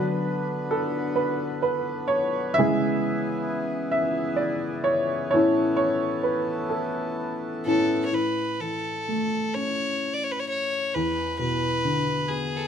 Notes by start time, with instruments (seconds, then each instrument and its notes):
Already playing: upright piano D3 F#3 D4 F#4 B4, harmonium D3 B3 B4
0.71 upright piano A4
1.16 upright piano B4
1.62 upright piano B4
2.08 upright piano C#5
2.54 harmonium E3 G#4, upright piano E5
2.58 upright piano C#3 G#3 E4 G#4
3.91 upright piano E5
4.36 upright piano D5
4.84 upright piano C#5
5.31 upright piano A2 E3 E4 C#5, harmonium A4
5.35 upright piano C#4
5.77 upright piano C#5
6.23 upright piano B4
6.69 upright piano A4
7.66 upright piano A2 E3 C#4, fiddle A4
8.06 fiddle C#5
8.12 upright piano A2, fiddle B4
8.60 upright piano E3, fiddle A4
9.08 upright piano A3
9.55 upright piano C#4, fiddle C#5
10.14 fiddle D5
10.23 fiddle C#5
10.32 fiddle B4
10.40 fiddle C#5
10.49 fiddle C#5
10.94 upright piano E2, fiddle B4
11.39 upright piano B2, fiddle B4
11.85 upright piano D3
12.28 upright piano B3, fiddle G#4
12.56 fiddle G#4 A4